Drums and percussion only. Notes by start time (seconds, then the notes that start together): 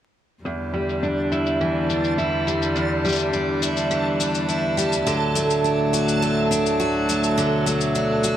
0.46 shaker
0.89 shaker
1.03 shaker
1.32 shaker
1.46 shaker
1.61 shaker
1.90 shaker
2.04 shaker
2.18 shaker
2.48 shaker
2.62 shaker
2.76 shaker
3.05 shaker
3.09 shaker
3.12 shaker
3.16 shaker
3.19 shaker
3.33 shaker
3.63 shaker
3.77 shaker
3.91 shaker
4.20 shaker
4.35 shaker
4.49 shaker
4.78 shaker
4.92 shaker
5.07 shaker
5.36 shaker
5.50 shaker
5.65 shaker
5.93 shaker
6.08 shaker
6.23 shaker
6.52 shaker
6.66 shaker
6.81 shaker
7.09 shaker
7.24 shaker
7.38 shaker
7.67 shaker
7.81 shaker
7.95 shaker
8.24 shaker